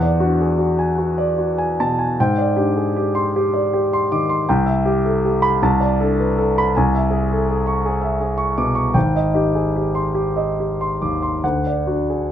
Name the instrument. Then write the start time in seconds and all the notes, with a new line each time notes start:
grand piano
Already playing: E2 F#5
0.02 D5
0.20 D4 F#4
0.41 G#4
0.58 F#4
0.79 G#5
0.98 F#4
1.18 D5
1.38 F#4
1.58 G#5
1.80 B2 A5
1.99 G#5
2.20 G#2 G5
2.38 D5
2.56 D4 G4
2.77 G#4
2.96 G4
3.15 C6
3.36 G4
3.53 D5
3.73 G4
3.93 C6
4.12 D#3 D6
4.29 C6
4.49 C2 G5
4.66 E5
4.85 G4
5.06 A4
5.25 G4
5.42 B5
5.62 C2 A5
5.80 D5
6.01 D4 A4
6.20 B4
6.38 A4
6.58 B5
6.77 C2 G#5
6.95 E5
7.11 G#4
7.33 A4
7.50 G#4
7.67 C#6
7.86 G#4
8.01 E5
8.20 G#4
8.38 C#6
8.58 B2 D6
8.75 C#6
8.94 G#1 G5
9.16 D#5
9.34 D#4 G4
9.55 G#4
9.76 G4
9.95 C6
10.15 G4
10.36 D#5
10.60 G4
10.81 C6
11.02 D#2 D6
11.22 C6
11.44 D2 F#5
11.67 D5
11.87 D4 F#4
12.10 G#4